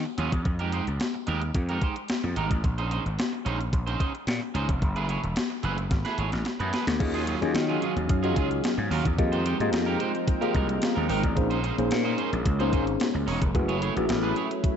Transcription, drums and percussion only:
0.18 closed hi-hat
0.32 kick, closed hi-hat
0.45 kick, closed hi-hat
0.59 closed hi-hat
0.72 closed hi-hat
0.87 closed hi-hat
1.00 snare, closed hi-hat
1.27 closed hi-hat
1.42 closed hi-hat
1.54 kick, closed hi-hat
1.69 closed hi-hat
1.82 kick, closed hi-hat
1.96 closed hi-hat
2.08 snare, closed hi-hat
2.36 closed hi-hat
2.51 kick, closed hi-hat
2.64 kick, closed hi-hat
2.78 closed hi-hat
2.91 closed hi-hat
3.06 closed hi-hat
3.19 snare, closed hi-hat
3.46 closed hi-hat
3.61 closed hi-hat
3.73 kick, closed hi-hat
3.87 closed hi-hat
4.00 kick, closed hi-hat
4.15 closed hi-hat
4.27 snare, closed hi-hat
4.55 closed hi-hat
4.69 kick, closed hi-hat
4.82 kick, closed hi-hat
4.96 closed hi-hat
5.09 closed hi-hat
5.24 closed hi-hat
5.36 snare, closed hi-hat
5.63 closed hi-hat
5.78 closed hi-hat
5.91 kick, snare, closed hi-hat
6.05 snare, closed hi-hat
6.18 closed hi-hat
6.32 snare, closed hi-hat
6.45 snare, closed hi-hat
6.60 closed hi-hat
6.73 snare, closed hi-hat
6.87 snare, closed hi-hat
7.00 kick, closed hi-hat, crash
7.14 closed hi-hat
7.27 closed hi-hat
7.42 closed hi-hat
7.55 snare, closed hi-hat
7.82 closed hi-hat
7.97 closed hi-hat
8.09 kick, closed hi-hat
8.24 closed hi-hat
8.36 kick, closed hi-hat
8.51 closed hi-hat
8.64 snare, closed hi-hat
8.91 open hi-hat
9.05 kick, closed hi-hat
9.18 kick, closed hi-hat
9.33 closed hi-hat
9.46 closed hi-hat
9.60 closed hi-hat
9.73 snare, closed hi-hat
10.00 closed hi-hat
10.15 closed hi-hat
10.28 kick, closed hi-hat
10.42 closed hi-hat
10.55 kick, closed hi-hat
10.69 closed hi-hat
10.82 snare, closed hi-hat
11.09 open hi-hat
11.24 kick, closed hi-hat
11.37 kick, closed hi-hat
11.51 closed hi-hat
11.64 closed hi-hat
11.78 closed hi-hat
11.91 snare, closed hi-hat
12.18 closed hi-hat
12.33 closed hi-hat
12.46 kick, closed hi-hat
12.60 closed hi-hat
12.73 kick, closed hi-hat
12.87 closed hi-hat
13.00 snare, closed hi-hat
13.28 open hi-hat
13.42 kick, closed hi-hat
13.55 kick, closed hi-hat
13.69 closed hi-hat
13.82 closed hi-hat
13.97 closed hi-hat
14.09 snare, closed hi-hat
14.36 closed hi-hat
14.51 closed hi-hat
14.64 kick, closed hi-hat

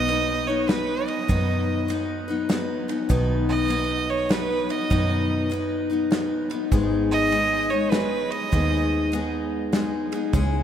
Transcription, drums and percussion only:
0.09 ride
0.69 snare, ride
1.08 ride
1.29 kick, ride
1.90 ride
2.50 snare, ride
2.89 ride
3.10 kick, ride
3.70 ride
4.30 snare, ride
4.70 ride
4.91 kick, ride
5.52 ride
6.12 snare, ride
6.51 ride
6.72 kick, ride
7.32 ride
7.92 snare, ride
8.32 ride
8.53 kick, ride
9.13 ride
9.73 snare, ride
10.12 ride
10.33 kick, ride

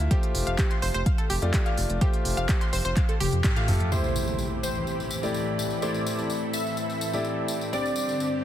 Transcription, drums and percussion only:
0.11 kick, closed hi-hat
0.23 closed hi-hat
0.35 open hi-hat
0.47 closed hi-hat
0.58 kick, clap, closed hi-hat
0.71 closed hi-hat
0.82 open hi-hat
0.94 closed hi-hat
1.06 kick, closed hi-hat
1.18 closed hi-hat
1.30 open hi-hat
1.42 closed hi-hat
1.54 kick, clap, closed hi-hat
1.66 closed hi-hat
1.78 open hi-hat
1.90 closed hi-hat
2.01 kick, closed hi-hat
2.13 closed hi-hat
2.25 open hi-hat
2.37 closed hi-hat
2.49 kick, clap, closed hi-hat
2.61 closed hi-hat
2.73 open hi-hat
2.85 closed hi-hat
2.97 kick, clap, closed hi-hat
3.09 closed hi-hat
3.20 open hi-hat, high tom
3.33 closed hi-hat
3.44 kick, clap, closed hi-hat, mid tom
3.56 closed hi-hat, mid tom
3.68 mid tom, open hi-hat
3.80 closed hi-hat, mid tom
3.92 tambourine
4.04 tambourine
4.16 tambourine
4.27 tambourine
4.39 tambourine
4.63 tambourine
4.75 tambourine
4.87 tambourine
5.00 tambourine
5.11 tambourine
5.23 tambourine
5.34 tambourine
5.59 tambourine
5.70 tambourine
5.82 tambourine
5.94 tambourine
6.06 tambourine
6.18 tambourine
6.30 tambourine
6.53 tambourine
6.66 tambourine
6.77 tambourine
6.90 tambourine
7.01 tambourine
7.13 tambourine
7.25 tambourine
7.48 tambourine
7.61 tambourine
7.73 tambourine
7.86 tambourine
7.96 tambourine
8.09 tambourine
8.20 tambourine

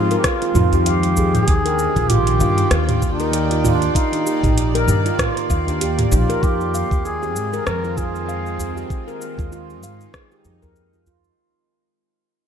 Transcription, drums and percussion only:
0.11 closed hi-hat, shaker
0.24 kick, cross-stick, closed hi-hat, shaker
0.42 closed hi-hat, shaker
0.55 mid tom, shaker
0.72 closed hi-hat, udu, shaker
0.86 closed hi-hat, shaker
1.03 closed hi-hat, shaker
1.17 udu, shaker
1.35 closed hi-hat, mid tom, shaker
1.48 kick, closed hi-hat, shaker
1.66 closed hi-hat, shaker
1.79 shaker
1.96 kick, closed hi-hat, udu, shaker
2.10 closed hi-hat, mid tom, shaker
2.27 closed hi-hat, shaker
2.40 shaker
2.58 closed hi-hat, shaker
2.71 cross-stick, closed hi-hat, shaker
2.89 closed hi-hat, mid tom, shaker
3.02 kick, shaker
3.20 closed hi-hat, shaker
3.33 closed hi-hat, shaker
3.51 closed hi-hat, shaker
3.64 mid tom, udu, shaker
3.82 closed hi-hat, shaker
3.95 kick, closed hi-hat, shaker
4.13 closed hi-hat, shaker
4.27 shaker
4.44 kick, closed hi-hat, mid tom, udu, shaker
4.58 closed hi-hat, shaker
4.75 closed hi-hat, shaker
4.88 shaker
5.06 closed hi-hat, shaker
5.19 kick, cross-stick, closed hi-hat, mid tom, shaker
5.37 closed hi-hat, shaker
5.50 kick, shaker
5.67 closed hi-hat, udu, shaker
5.81 closed hi-hat, shaker
5.99 closed hi-hat, mid tom, shaker
6.12 udu, shaker
6.30 closed hi-hat, shaker
6.43 kick, shaker
6.61 shaker
6.74 shaker
6.91 kick, udu, shaker
7.05 shaker
7.23 shaker
7.36 shaker
7.53 shaker
7.67 cross-stick, shaker
7.84 shaker
7.98 kick, shaker
8.15 shaker
8.29 shaker
8.46 shaker
8.59 udu, shaker
8.77 shaker
8.90 kick, shaker
9.08 shaker
9.21 shaker
9.38 kick, udu, shaker
9.52 shaker
9.70 shaker
9.83 shaker
10.01 shaker
10.14 kick, cross-stick, shaker
10.31 shaker
10.45 shaker
10.62 udu, shaker
10.76 shaker
10.93 shaker
11.06 udu, shaker
11.24 shaker

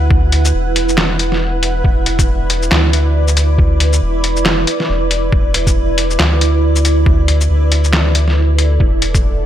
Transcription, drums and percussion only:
0.11 kick
0.32 closed hi-hat
0.45 shaker
0.76 closed hi-hat
0.89 shaker
0.98 snare, clap
1.19 closed hi-hat
1.32 snare
1.63 closed hi-hat
1.84 kick
2.06 closed hi-hat
2.19 kick, shaker
2.50 closed hi-hat
2.62 shaker
2.72 snare, clap
2.93 closed hi-hat
3.28 shaker
3.37 closed hi-hat, shaker
3.58 kick
3.80 closed hi-hat
3.93 shaker
4.24 closed hi-hat
4.36 shaker
4.46 snare, clap
4.67 closed hi-hat
4.80 snare
5.11 closed hi-hat
5.32 kick
5.54 closed hi-hat
5.67 kick, shaker
5.98 closed hi-hat
6.10 shaker
6.20 snare, clap
6.41 closed hi-hat
6.76 shaker
6.85 closed hi-hat, shaker
7.06 kick
7.28 closed hi-hat
7.41 shaker
7.72 closed hi-hat
7.84 shaker
7.93 snare, clap
8.15 closed hi-hat
8.28 snare
8.59 closed hi-hat
8.80 kick
9.02 closed hi-hat
9.15 kick, shaker

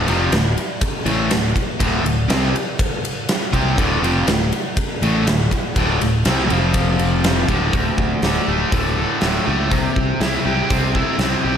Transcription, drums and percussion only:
0.08 snare, ride
0.32 snare, ride
0.58 ride
0.81 kick, ride
1.06 ride
1.31 snare, ride
1.56 kick, ride
1.80 kick, ride
2.06 ride
2.30 snare, ride
2.56 ride
2.79 kick, ride
3.05 ride
3.29 snare, ride
3.53 kick, ride
3.78 kick, ride
4.04 ride
4.28 snare, ride
4.52 ride
4.77 kick, ride
5.03 ride
5.27 snare, ride
5.51 kick, ride
5.76 kick, ride
6.01 snare, ride
6.25 snare, ride
6.50 ride
6.74 kick, ride
6.99 ride
7.24 snare, ride
7.49 kick, ride
7.73 kick, open hi-hat
7.98 kick
8.23 snare, open hi-hat
8.72 kick, open hi-hat
9.21 snare, open hi-hat
9.71 kick, open hi-hat
9.96 kick
10.21 snare, open hi-hat
10.70 kick, open hi-hat
10.95 kick
11.19 snare, open hi-hat

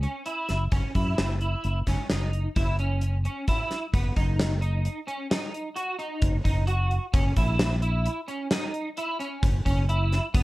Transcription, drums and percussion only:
0.03 closed hi-hat
0.26 closed hi-hat
0.49 snare, closed hi-hat
0.72 kick, closed hi-hat
0.95 kick, closed hi-hat
1.18 snare, closed hi-hat
1.41 closed hi-hat
1.64 closed hi-hat
1.87 kick, snare, closed hi-hat
2.10 snare, closed hi-hat
2.33 closed hi-hat
2.56 kick, closed hi-hat
2.79 closed hi-hat
3.01 closed hi-hat
3.25 closed hi-hat
3.48 kick, closed hi-hat
3.71 snare, closed hi-hat
3.94 kick, closed hi-hat
4.16 kick, closed hi-hat
4.39 snare, closed hi-hat
4.62 closed hi-hat
4.85 closed hi-hat
5.08 closed hi-hat
5.31 snare, closed hi-hat
5.54 closed hi-hat
5.76 closed hi-hat
5.99 closed hi-hat
6.22 kick, closed hi-hat
6.45 kick, closed hi-hat
6.67 closed hi-hat
6.91 closed hi-hat
7.14 kick, closed hi-hat
7.36 kick, closed hi-hat
7.59 snare, closed hi-hat
7.82 closed hi-hat
8.05 closed hi-hat
8.28 closed hi-hat
8.51 snare, closed hi-hat
8.74 closed hi-hat
8.97 closed hi-hat
9.20 closed hi-hat
9.43 kick, closed hi-hat
9.66 kick, closed hi-hat
9.89 closed hi-hat
10.12 snare, closed hi-hat
10.34 kick, closed hi-hat

